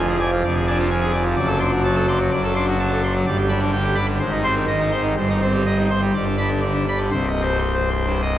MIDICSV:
0, 0, Header, 1, 2, 480
1, 0, Start_track
1, 0, Key_signature, -3, "minor"
1, 0, Tempo, 472069
1, 1397, Time_signature, 4, 2, 24, 8
1, 4280, Tempo, 482703
1, 8428, End_track
2, 0, Start_track
2, 0, Title_t, "Pipe organ"
2, 0, Program_c, 0, 19
2, 0, Note_on_c, 0, 29, 81
2, 0, Note_on_c, 0, 41, 78
2, 0, Note_on_c, 0, 53, 67
2, 84, Note_on_c, 0, 68, 69
2, 178, Note_off_c, 0, 53, 0
2, 189, Note_off_c, 0, 68, 0
2, 201, Note_on_c, 0, 74, 69
2, 207, Note_on_c, 0, 80, 81
2, 302, Note_off_c, 0, 74, 0
2, 306, Note_off_c, 0, 80, 0
2, 326, Note_on_c, 0, 53, 73
2, 428, Note_off_c, 0, 29, 0
2, 428, Note_off_c, 0, 41, 0
2, 431, Note_off_c, 0, 53, 0
2, 447, Note_on_c, 0, 74, 76
2, 448, Note_on_c, 0, 29, 75
2, 449, Note_on_c, 0, 41, 74
2, 551, Note_off_c, 0, 74, 0
2, 562, Note_on_c, 0, 68, 73
2, 668, Note_off_c, 0, 68, 0
2, 683, Note_on_c, 0, 62, 70
2, 688, Note_on_c, 0, 74, 70
2, 688, Note_on_c, 0, 80, 73
2, 786, Note_off_c, 0, 74, 0
2, 786, Note_off_c, 0, 80, 0
2, 801, Note_on_c, 0, 53, 71
2, 894, Note_off_c, 0, 62, 0
2, 903, Note_off_c, 0, 53, 0
2, 923, Note_on_c, 0, 53, 66
2, 925, Note_on_c, 0, 80, 76
2, 1028, Note_off_c, 0, 80, 0
2, 1034, Note_on_c, 0, 68, 72
2, 1134, Note_off_c, 0, 53, 0
2, 1142, Note_off_c, 0, 68, 0
2, 1148, Note_on_c, 0, 80, 72
2, 1151, Note_on_c, 0, 74, 70
2, 1254, Note_off_c, 0, 80, 0
2, 1255, Note_off_c, 0, 74, 0
2, 1269, Note_on_c, 0, 53, 64
2, 1373, Note_off_c, 0, 29, 0
2, 1373, Note_off_c, 0, 41, 0
2, 1374, Note_off_c, 0, 53, 0
2, 1386, Note_on_c, 0, 30, 84
2, 1386, Note_on_c, 0, 74, 77
2, 1388, Note_on_c, 0, 42, 83
2, 1493, Note_on_c, 0, 69, 74
2, 1498, Note_off_c, 0, 74, 0
2, 1610, Note_off_c, 0, 69, 0
2, 1624, Note_on_c, 0, 74, 67
2, 1625, Note_on_c, 0, 84, 94
2, 1626, Note_on_c, 0, 62, 69
2, 1731, Note_off_c, 0, 74, 0
2, 1731, Note_off_c, 0, 84, 0
2, 1744, Note_on_c, 0, 54, 67
2, 1843, Note_off_c, 0, 62, 0
2, 1855, Note_off_c, 0, 54, 0
2, 1876, Note_on_c, 0, 81, 77
2, 1879, Note_on_c, 0, 54, 70
2, 1982, Note_off_c, 0, 81, 0
2, 1986, Note_on_c, 0, 69, 70
2, 2091, Note_off_c, 0, 54, 0
2, 2096, Note_off_c, 0, 69, 0
2, 2117, Note_on_c, 0, 74, 67
2, 2117, Note_on_c, 0, 84, 75
2, 2218, Note_off_c, 0, 74, 0
2, 2218, Note_off_c, 0, 84, 0
2, 2244, Note_on_c, 0, 54, 69
2, 2329, Note_off_c, 0, 30, 0
2, 2332, Note_off_c, 0, 42, 0
2, 2347, Note_off_c, 0, 54, 0
2, 2350, Note_on_c, 0, 30, 72
2, 2353, Note_on_c, 0, 42, 69
2, 2354, Note_on_c, 0, 74, 78
2, 2461, Note_off_c, 0, 74, 0
2, 2470, Note_on_c, 0, 69, 68
2, 2578, Note_off_c, 0, 69, 0
2, 2593, Note_on_c, 0, 74, 68
2, 2593, Note_on_c, 0, 84, 73
2, 2594, Note_on_c, 0, 62, 71
2, 2695, Note_off_c, 0, 74, 0
2, 2695, Note_off_c, 0, 84, 0
2, 2720, Note_on_c, 0, 54, 68
2, 2808, Note_off_c, 0, 62, 0
2, 2824, Note_off_c, 0, 54, 0
2, 2837, Note_on_c, 0, 81, 73
2, 2844, Note_on_c, 0, 54, 62
2, 2943, Note_off_c, 0, 81, 0
2, 2963, Note_on_c, 0, 69, 72
2, 3055, Note_off_c, 0, 54, 0
2, 3067, Note_off_c, 0, 69, 0
2, 3088, Note_on_c, 0, 74, 65
2, 3088, Note_on_c, 0, 84, 69
2, 3185, Note_off_c, 0, 74, 0
2, 3185, Note_off_c, 0, 84, 0
2, 3210, Note_on_c, 0, 54, 66
2, 3286, Note_off_c, 0, 30, 0
2, 3287, Note_off_c, 0, 42, 0
2, 3307, Note_off_c, 0, 54, 0
2, 3322, Note_on_c, 0, 31, 84
2, 3322, Note_on_c, 0, 43, 78
2, 3325, Note_on_c, 0, 74, 70
2, 3429, Note_off_c, 0, 74, 0
2, 3429, Note_on_c, 0, 67, 65
2, 3540, Note_off_c, 0, 67, 0
2, 3549, Note_on_c, 0, 74, 65
2, 3549, Note_on_c, 0, 83, 84
2, 3551, Note_on_c, 0, 62, 64
2, 3655, Note_off_c, 0, 74, 0
2, 3655, Note_off_c, 0, 83, 0
2, 3674, Note_on_c, 0, 50, 59
2, 3769, Note_off_c, 0, 62, 0
2, 3772, Note_off_c, 0, 50, 0
2, 3787, Note_on_c, 0, 79, 72
2, 3792, Note_on_c, 0, 50, 62
2, 3899, Note_off_c, 0, 79, 0
2, 3909, Note_on_c, 0, 67, 64
2, 4009, Note_off_c, 0, 50, 0
2, 4015, Note_on_c, 0, 83, 68
2, 4017, Note_on_c, 0, 74, 60
2, 4020, Note_off_c, 0, 67, 0
2, 4128, Note_off_c, 0, 83, 0
2, 4129, Note_off_c, 0, 74, 0
2, 4152, Note_on_c, 0, 50, 59
2, 4254, Note_off_c, 0, 31, 0
2, 4254, Note_off_c, 0, 43, 0
2, 4258, Note_off_c, 0, 50, 0
2, 4272, Note_on_c, 0, 72, 58
2, 4274, Note_on_c, 0, 32, 71
2, 4274, Note_on_c, 0, 44, 73
2, 4381, Note_off_c, 0, 72, 0
2, 4385, Note_on_c, 0, 63, 56
2, 4497, Note_off_c, 0, 63, 0
2, 4500, Note_on_c, 0, 60, 57
2, 4503, Note_on_c, 0, 72, 58
2, 4508, Note_on_c, 0, 84, 86
2, 4610, Note_off_c, 0, 72, 0
2, 4613, Note_off_c, 0, 84, 0
2, 4622, Note_on_c, 0, 51, 54
2, 4720, Note_off_c, 0, 60, 0
2, 4723, Note_off_c, 0, 51, 0
2, 4743, Note_on_c, 0, 51, 52
2, 4746, Note_on_c, 0, 75, 59
2, 4857, Note_off_c, 0, 75, 0
2, 4866, Note_on_c, 0, 63, 55
2, 4963, Note_off_c, 0, 51, 0
2, 4969, Note_off_c, 0, 63, 0
2, 4989, Note_on_c, 0, 63, 53
2, 4989, Note_on_c, 0, 84, 60
2, 4991, Note_on_c, 0, 72, 54
2, 5095, Note_off_c, 0, 84, 0
2, 5096, Note_off_c, 0, 72, 0
2, 5099, Note_on_c, 0, 51, 52
2, 5199, Note_off_c, 0, 63, 0
2, 5207, Note_off_c, 0, 32, 0
2, 5207, Note_off_c, 0, 44, 0
2, 5210, Note_off_c, 0, 51, 0
2, 5233, Note_on_c, 0, 43, 63
2, 5237, Note_on_c, 0, 31, 63
2, 5240, Note_on_c, 0, 72, 55
2, 5348, Note_off_c, 0, 72, 0
2, 5359, Note_on_c, 0, 63, 49
2, 5468, Note_off_c, 0, 63, 0
2, 5475, Note_on_c, 0, 60, 52
2, 5477, Note_on_c, 0, 72, 50
2, 5478, Note_on_c, 0, 84, 68
2, 5583, Note_off_c, 0, 72, 0
2, 5583, Note_off_c, 0, 84, 0
2, 5604, Note_on_c, 0, 55, 47
2, 5694, Note_off_c, 0, 60, 0
2, 5695, Note_off_c, 0, 55, 0
2, 5715, Note_on_c, 0, 55, 49
2, 5717, Note_on_c, 0, 75, 57
2, 5828, Note_off_c, 0, 75, 0
2, 5846, Note_on_c, 0, 63, 50
2, 5934, Note_off_c, 0, 55, 0
2, 5953, Note_off_c, 0, 63, 0
2, 5960, Note_on_c, 0, 72, 49
2, 5961, Note_on_c, 0, 84, 53
2, 6065, Note_off_c, 0, 72, 0
2, 6065, Note_off_c, 0, 84, 0
2, 6079, Note_on_c, 0, 55, 48
2, 6175, Note_off_c, 0, 43, 0
2, 6176, Note_off_c, 0, 31, 0
2, 6185, Note_off_c, 0, 55, 0
2, 6196, Note_on_c, 0, 31, 61
2, 6196, Note_on_c, 0, 74, 53
2, 6200, Note_on_c, 0, 43, 60
2, 6309, Note_off_c, 0, 74, 0
2, 6317, Note_on_c, 0, 62, 49
2, 6418, Note_off_c, 0, 62, 0
2, 6435, Note_on_c, 0, 83, 69
2, 6438, Note_on_c, 0, 62, 48
2, 6440, Note_on_c, 0, 74, 49
2, 6545, Note_off_c, 0, 83, 0
2, 6547, Note_off_c, 0, 74, 0
2, 6549, Note_on_c, 0, 50, 46
2, 6654, Note_off_c, 0, 50, 0
2, 6660, Note_off_c, 0, 62, 0
2, 6674, Note_on_c, 0, 50, 44
2, 6674, Note_on_c, 0, 74, 54
2, 6790, Note_off_c, 0, 74, 0
2, 6791, Note_on_c, 0, 62, 49
2, 6899, Note_off_c, 0, 50, 0
2, 6910, Note_off_c, 0, 62, 0
2, 6935, Note_on_c, 0, 83, 51
2, 6936, Note_on_c, 0, 74, 44
2, 7038, Note_off_c, 0, 83, 0
2, 7039, Note_off_c, 0, 74, 0
2, 7049, Note_on_c, 0, 50, 49
2, 7142, Note_off_c, 0, 31, 0
2, 7144, Note_off_c, 0, 43, 0
2, 7154, Note_off_c, 0, 50, 0
2, 7165, Note_on_c, 0, 72, 62
2, 7166, Note_on_c, 0, 36, 76
2, 7169, Note_on_c, 0, 24, 74
2, 7311, Note_off_c, 0, 72, 0
2, 7323, Note_on_c, 0, 75, 65
2, 7469, Note_off_c, 0, 75, 0
2, 7476, Note_on_c, 0, 72, 62
2, 7624, Note_off_c, 0, 72, 0
2, 7636, Note_on_c, 0, 84, 82
2, 7784, Note_off_c, 0, 84, 0
2, 7789, Note_on_c, 0, 72, 55
2, 7939, Note_off_c, 0, 72, 0
2, 7952, Note_on_c, 0, 84, 61
2, 8099, Note_off_c, 0, 84, 0
2, 8109, Note_on_c, 0, 72, 63
2, 8111, Note_on_c, 0, 43, 57
2, 8222, Note_off_c, 0, 43, 0
2, 8256, Note_off_c, 0, 72, 0
2, 8264, Note_on_c, 0, 75, 61
2, 8412, Note_off_c, 0, 75, 0
2, 8428, Note_off_c, 0, 24, 0
2, 8428, Note_off_c, 0, 36, 0
2, 8428, End_track
0, 0, End_of_file